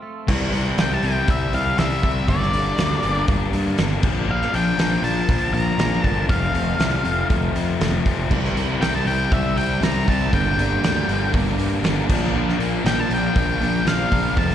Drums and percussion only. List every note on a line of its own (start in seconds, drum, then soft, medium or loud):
0.28 kick loud
0.28 crash loud
0.53 open hi-hat medium
0.78 snare loud
0.78 open hi-hat medium
1.03 open hi-hat medium
1.28 kick loud
1.28 open hi-hat loud
1.53 open hi-hat medium
1.78 snare loud
1.78 open hi-hat loud
2.03 kick medium
2.03 open hi-hat medium
2.28 kick loud
2.28 open hi-hat medium
2.42 snare soft
2.53 open hi-hat medium
2.78 snare loud
2.78 open hi-hat medium
3.03 open hi-hat medium
3.28 kick loud
3.28 open hi-hat medium
3.53 open hi-hat medium
3.78 snare loud
3.78 open hi-hat medium
4.03 kick loud
4.03 crash loud
4.42 snare soft
4.54 open hi-hat medium
4.79 snare loud
4.79 open hi-hat medium
5.04 open hi-hat medium
5.29 kick loud
5.29 open hi-hat loud
5.54 open hi-hat medium
5.79 snare loud
5.79 open hi-hat medium
6.04 kick medium
6.04 open hi-hat medium
6.29 kick loud
6.29 open hi-hat medium
6.55 open hi-hat medium
6.80 snare loud
6.80 open hi-hat medium
7.05 open hi-hat medium
7.30 kick loud
7.30 open hi-hat medium
7.56 open hi-hat medium
7.81 snare loud
7.81 open hi-hat medium
8.06 kick medium
8.06 open hi-hat medium
8.31 kick loud
8.31 crash loud
8.45 snare soft
8.57 open hi-hat medium
8.82 snare loud
8.82 open hi-hat medium
9.07 open hi-hat medium
9.32 kick loud
9.32 open hi-hat medium
9.57 open hi-hat medium
9.83 snare loud
9.83 open hi-hat medium
10.08 kick medium
10.08 open hi-hat medium
10.33 kick loud
10.33 open hi-hat medium
10.59 open hi-hat medium
10.84 snare loud
10.84 open hi-hat medium
11.09 open hi-hat medium
11.34 kick loud
11.34 open hi-hat medium
11.59 open hi-hat medium
11.84 snare loud
11.84 open hi-hat medium
12.09 kick loud
12.09 crash loud
12.49 snare soft
12.60 open hi-hat medium
12.86 snare loud
12.86 open hi-hat medium
13.11 open hi-hat medium
13.36 kick loud
13.36 open hi-hat medium
13.61 open hi-hat medium
13.87 snare loud
13.87 open hi-hat medium
14.12 kick medium
14.12 open hi-hat medium
14.37 kick loud
14.37 open hi-hat medium
14.51 snare soft